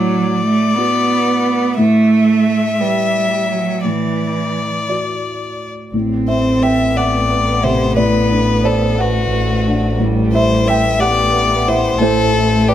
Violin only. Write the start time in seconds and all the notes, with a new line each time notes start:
Already playing: D5
1.78 E5
3.84 D5
6.29 C5
6.62 E5
6.97 D5
7.64 C5
7.97 B4
8.65 A4
9.01 F#4
10.33 C5
10.68 E5
11.00 D5
11.68 C5
11.98 A4
12.68 G4